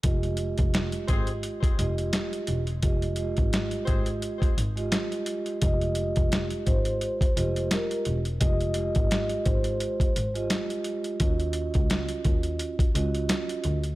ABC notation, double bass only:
X:1
M:4/4
L:1/16
Q:"Swing 16ths" 1/4=86
K:Fm
V:1 name="Double bass" clef=bass
F,,,3 F,,, z2 A,,,2 z2 F,,,2 z2 =E,,,2 | F,,,3 A,,, z2 A,,,2 z2 A,,,2 z4 | F,,,3 F,,, z2 A,,,2 z2 F,,,2 z2 =E,,,2 | F,,,3 A,,, z2 A,,,2 z2 A,,,2 z4 |
E,,3 D,, z2 E,,2 z2 D,,2 z2 =D,,2 |]